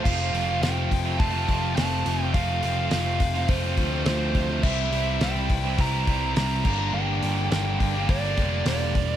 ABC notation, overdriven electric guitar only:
X:1
M:4/4
L:1/16
Q:1/4=105
K:F
V:1 name="Overdriven electric guitar"
[F,A,CF]2 [F,A,CF]2 [F,A,CF] [A,CF]2 [A,CF]2 [A,CF] [F,A,CF]2 [F,A,CF]2 [F,A,CF] [A,CF] | [F,A,CF]2 [F,A,CF]2 [F,A,CF] [A,CF]2 [A,CF]2 [A,CF] [F,A,CF]2 [F,A,CF]2 [F,A,CF] [A,CF] | [C,G,CE]2 [C,G,CE]2 [C,G,CE] [G,CE]2 [G,CE]2 [G,CE] [C,G,CE]2 [C,G,CE]2 [G,,D,G,B,D] [G,B,D] | [G,,D,G,B,D]2 [D,G,B,D]2 [G,,D,G,B,D] [G,B,D]2 [G,B,D]2 [G,B,D] [D,G,B,D]2 [G,,D,G,B,D]2 [D,G,B,D] [G,B,D] |]